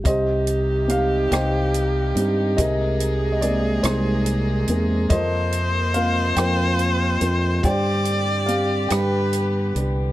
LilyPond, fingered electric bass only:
\new Staff \with { instrumentName = "Fingered electric bass" } { \clef bass \time 6/8 \key c \minor \tempo 4. = 47 c,4. c,4 g,8 | c,4. c,4 e,8 | f,4. f,4 f,8 | g,4. g,4 c,8 | }